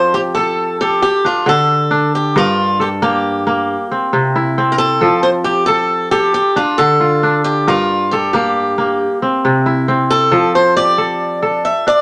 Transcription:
0.00 1.07 F3 medium
0.00 1.05 C4 medium
0.00 0.14 G4 medium
0.00 0.37 A4 medium
0.00 0.14 C5 medium
0.14 1.55 G4 medium
0.14 0.20 G4 medium
0.35 0.76 A4 medium
0.35 0.81 A4 medium
0.81 1.01 G4 medium
0.81 2.13 A4 medium
1.02 1.25 G4 medium
1.25 1.90 D4 medium
1.25 1.48 F4 medium
1.46 2.40 D3 medium
1.46 2.15 A4 medium
1.91 3.59 D4 medium
2.15 2.37 G4 medium
2.36 3.74 G2 medium
2.36 2.82 F4 medium
2.36 3.63 A#4 medium
2.80 2.87 G4 medium
2.80 3.53 A4 medium
3.02 3.46 A#3 medium
3.02 3.87 G4 medium
3.47 5.07 A#3 medium
3.91 4.57 C4 medium
4.13 5.07 C3 medium
4.36 5.07 E4 medium
4.58 6.38 C4 medium
4.72 4.78 A#4 medium
4.78 5.23 A4 medium
5.01 6.39 F3 medium
5.01 5.68 A4 medium
5.23 5.29 C5 medium
5.44 5.66 G4 medium
5.44 6.87 G4 medium
5.66 6.11 A4 medium
6.11 6.33 G4 medium
6.11 7.43 A4 medium
6.34 6.57 G4 medium
6.56 7.23 D4 medium
6.56 6.79 F4 medium
6.78 7.72 D3 medium
6.78 7.41 A4 medium
7.00 8.52 F4 medium
7.23 8.91 D4 medium
7.44 7.68 G4 medium
7.68 9.05 G2 medium
7.68 8.13 F4 medium
7.68 8.95 A#4 medium
8.11 8.32 G4 medium
8.11 8.84 A4 medium
8.33 8.78 A#3 medium
8.33 9.18 G4 medium
8.78 10.38 A#3 medium
9.22 9.88 C4 medium
9.45 10.38 C3 medium
9.66 10.38 E4 medium
9.88 11.68 C4 medium
10.11 10.52 A4 medium
10.32 11.70 F3 medium
10.32 10.98 A4 medium
10.55 10.76 C5 medium
10.76 12.02 G4 medium
10.76 11.64 D5 medium
10.98 11.42 A4 medium
11.42 12.02 A4 medium
11.65 11.87 E5 medium
11.87 12.02 D4 medium
11.87 12.02 D5 medium

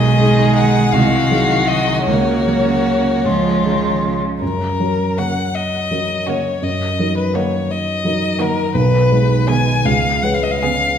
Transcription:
0.00 0.19 B1 soft
0.00 0.89 D#3 soft
0.00 0.90 G#3 soft
0.00 0.95 G#4 soft
0.00 0.55 D#5 medium
0.19 0.89 G#3 soft
0.19 0.90 D#4 soft
0.19 0.90 G#4 soft
0.55 0.94 F#5 medium
0.92 1.29 C2 soft
0.92 2.10 D#3 soft
0.92 2.10 G#3 soft
0.92 2.07 F#4 soft
0.92 1.69 F5 medium
1.31 2.03 F#3 soft
1.31 2.04 D#4 soft
1.31 2.04 G#4 soft
1.68 2.06 D#5 medium
2.06 2.45 C#2 soft
2.06 3.24 C#3 soft
2.06 3.26 A#3 soft
2.06 3.27 F#4 soft
2.06 3.98 C#5 soft
2.47 3.21 F#3 soft
2.47 3.22 C#4 soft
2.47 3.22 A#4 soft
3.25 3.63 C#2 soft
3.25 3.66 F3 soft
3.25 4.21 G#3 soft
3.25 4.21 F4 soft
3.64 4.03 D#3 soft
3.64 4.37 F3 soft
3.64 4.38 C#4 soft
3.64 4.38 G#4 soft
4.04 4.41 C#3 soft
4.41 4.79 F#2 soft
4.41 5.19 A#4 soft
4.80 5.88 F#3 soft
4.80 5.88 C#4 soft
4.80 5.88 A#4 soft
5.17 5.45 C#3 soft
5.17 5.46 A#3 soft
5.17 5.46 F#4 soft
5.17 5.56 F#5 soft
5.55 6.30 D#5 medium
5.91 6.59 F#3 soft
5.91 6.59 C#4 soft
5.91 6.59 A#4 soft
6.27 6.54 C#3 soft
6.27 6.55 A#3 soft
6.27 6.54 F#4 soft
6.27 6.65 C#5 soft
6.62 6.97 F#2 soft
6.62 7.17 D#5 medium
6.99 8.01 F#3 soft
6.99 8.01 D#4 soft
6.99 8.01 A#4 soft
7.17 7.36 B4 soft
7.34 7.61 D#3 soft
7.34 7.61 A#3 soft
7.34 7.61 F#4 soft
7.34 7.72 C#5 soft
7.71 8.42 D#5 medium
8.05 8.71 F#3 soft
8.05 8.71 D#4 soft
8.05 8.71 A#4 soft
8.39 8.66 D#3 soft
8.39 8.66 A#3 soft
8.39 8.66 F#4 soft
8.39 8.75 A#4 medium
8.74 9.10 B1 soft
8.74 9.49 B4 medium
9.11 9.81 G#3 soft
9.11 9.82 D#4 soft
9.11 9.82 B4 soft
9.47 9.76 D#3 medium
9.47 9.76 B3 soft
9.47 9.76 G#4 soft
9.47 9.87 G#5 medium
9.85 10.22 C#2 soft
9.85 10.24 F5 medium
10.23 10.98 G#3 soft
10.23 10.98 C#4 soft
10.23 10.98 B4 soft
10.23 10.35 F#5 medium
10.34 10.44 F5 medium
10.43 10.53 D#5 medium
10.51 10.60 F5 medium
10.61 10.92 C#3 soft
10.61 10.93 B3 soft
10.61 10.92 G#4 soft
10.61 10.98 F5 medium

